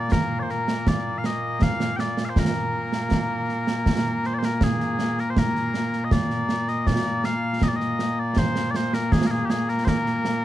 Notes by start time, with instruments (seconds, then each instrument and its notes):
Already playing: bagpipes A#2 A#3 D5
0.12 bagpipes A#4, concert bass drum, snare
0.39 bagpipes C5 D5
0.49 bagpipes A#4, snare
0.68 snare
0.87 bagpipes D5, concert bass drum, snare
1.18 bagpipes F5
1.24 bagpipes D#5, snare
1.62 bagpipes F5, concert bass drum, snare
1.80 snare
1.97 bagpipes D5 G5, snare
2.17 snare
2.25 bagpipes F5
2.29 bagpipes C5
2.36 bagpipes A#4, concert bass drum, snare
2.93 snare
3.11 concert bass drum, snare
3.49 snare
3.67 snare
3.86 concert bass drum, snare
4.24 bagpipes C5, snare
4.34 bagpipes D5
4.38 bagpipes C5
4.43 bagpipes A#4, snare
4.54 bagpipes A#4
4.61 bagpipes G#4, concert bass drum, snare
4.80 snare
4.99 snare
5.18 bagpipes A#4, snare
5.30 bagpipes C5
5.37 bagpipes A#4, concert bass drum, snare
5.55 snare
5.74 snare
5.93 snare
6.04 bagpipes D#5
6.11 bagpipes D5, concert bass drum, snare
6.30 snare
6.49 snare
6.68 bagpipes D#5, snare
6.79 bagpipes D#5
6.87 bagpipes D5, concert bass drum, snare
7.05 snare
7.24 bagpipes F5, snare
7.62 bagpipes D#5, concert bass drum, snare
7.68 bagpipes D5
7.76 bagpipes D#5
7.80 snare
7.99 snare
8.20 bagpipes D5
8.37 bagpipes C5, concert bass drum, snare
8.56 snare
8.71 bagpipes D5, snare
8.76 bagpipes C5
8.93 bagpipes A#4, snare
9.12 bagpipes G#4, concert bass drum, snare
9.27 bagpipes A#4, snare
9.31 bagpipes G#4
9.45 bagpipes G4
9.50 bagpipes G#4, snare
9.68 bagpipes A#4, snare
9.84 bagpipes A#4 C5, concert bass drum, snare
10.06 snare
10.25 snare